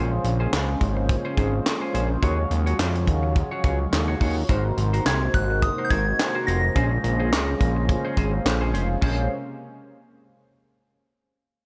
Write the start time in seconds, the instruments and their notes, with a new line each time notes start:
Already playing: analog synth bass A#1, analog synth pad C#3 G#3 A#3 C#4, clean electric guitar C#4 G#4 C5, analog polysynth C#4 F4 G#4 C5
0.12 muted clean electric guitar stroke
0.24 analog synth bass A#1, muted clean electric guitar stroke, closed hi-hat
0.40 clean electric guitar C#4 G#4 C5
0.53 analog synth bass C#2, muted clean electric guitar stroke, snare, clap, closed hi-hat
0.69 muted clean electric guitar stroke
0.81 analog synth bass G#1, kick, closed hi-hat
0.97 muted clean electric guitar stroke
1.09 muted clean electric guitar stroke, kick, closed hi-hat
1.25 clean electric guitar C#4 G#4 C5
1.37 analog synth bass G#1, clean electric guitar C#4 G#4 C5, kick, closed hi-hat
1.53 muted clean electric guitar stroke
1.65 muted clean electric guitar stroke, snare, clap, closed hi-hat
1.81 clean electric guitar C#4 G#4 C5
1.94 analog synth bass A#1, clean electric guitar C#4 G#4 C5, closed hi-hat
2.10 muted clean electric guitar stroke
2.22 analog synth bass D#2, analog synth pad C#3 F#3 F5, analog polysynth F4 F#4 G#4 C#5, clean electric guitar F#4 G#4 C#5, kick, closed hi-hat
2.38 muted clean electric guitar stroke
2.51 analog synth bass D#2, muted clean electric guitar stroke, closed hi-hat
2.66 clean electric guitar F#4 G#4 C#5, closed hi-hat
2.79 analog synth bass F2, snare, clap, closed hi-hat
2.95 muted clean electric guitar stroke, closed hi-hat
3.07 analog synth bass D#2, kick, closed hi-hat
3.23 muted clean electric guitar stroke
3.36 muted clean electric guitar stroke, kick, closed hi-hat
3.51 clean electric guitar F#4 G#4 C#5
3.64 analog synth bass C#2, clean electric guitar F#4 G#4 C#5, kick, closed hi-hat
3.80 muted clean electric guitar stroke
3.92 analog synth bass D#2, muted clean electric guitar stroke, snare, clap, closed hi-hat
4.08 clean electric guitar F#4 G#4 C#5
4.20 analog synth bass D#2, clean electric guitar F#4 G#4 C#5, kick, open hi-hat
4.37 muted clean electric guitar stroke
4.48 analog synth bass G#1, analog synth pad C3 G#3 A#3 F#4, analog polysynth D#4 F#4 A#4 C5, clean electric guitar F#4 A#4 C5, kick, closed hi-hat
4.65 muted clean electric guitar stroke
4.77 analog synth bass G#1, muted clean electric guitar stroke, closed hi-hat
4.93 clean electric guitar F#4 A#4 C5, closed hi-hat
5.06 analog synth bass C2, synth bell G#6, snare, clap, closed hi-hat
5.22 muted clean electric guitar stroke
5.34 analog synth bass G#1, synth bell F#6, kick, closed hi-hat
5.50 muted clean electric guitar stroke
5.62 synth bell D#6, muted clean electric guitar stroke, kick, closed hi-hat
5.78 clean electric guitar F#4 A#4 C5
5.85 synth bell G6
5.90 analog synth bass G#1, clean electric guitar F#4 A#4 C5, synth bell G#6, kick, closed hi-hat
6.07 muted clean electric guitar stroke
6.19 muted clean electric guitar stroke, snare, clap, closed hi-hat
6.35 clean electric guitar F#4 A#4 C5
6.47 analog synth bass F1, clean electric guitar F#4 A#4 C5, synth bell A#6, closed hi-hat
6.63 muted clean electric guitar stroke
6.75 analog synth bass A#1, analog synth pad C#3 A#3 C#4, analog polysynth C#4 F4 G#4 C5, clean electric guitar C#4 G#4 C5, kick, closed hi-hat
6.92 muted clean electric guitar stroke
7.04 analog synth bass A#1, muted clean electric guitar stroke, closed hi-hat
7.20 clean electric guitar C#4 G#4 C5
7.32 analog synth bass C#2, muted clean electric guitar stroke, snare, clap, closed hi-hat
7.48 muted clean electric guitar stroke
7.61 analog synth bass A#1, kick, closed hi-hat
7.76 muted clean electric guitar stroke
7.89 muted clean electric guitar stroke, kick, closed hi-hat
8.05 clean electric guitar C#4 G#4 C5
8.17 analog synth bass G#1, clean electric guitar C#4 G#4 C5, kick, closed hi-hat
8.33 muted clean electric guitar stroke
8.45 analog synth bass A#1, muted clean electric guitar stroke, snare, clap, closed hi-hat
8.61 clean electric guitar C#4 G#4 C5
8.73 analog synth bass F1, clean electric guitar C#4 G#4 C5, closed hi-hat
8.89 muted clean electric guitar stroke
9.01 analog synth bass A#1, analog synth pad C3 G#3 A#3 C#4, clean electric guitar C#4 G#4 C5, analog polysynth C#4 F4 G#4 C5, kick, crash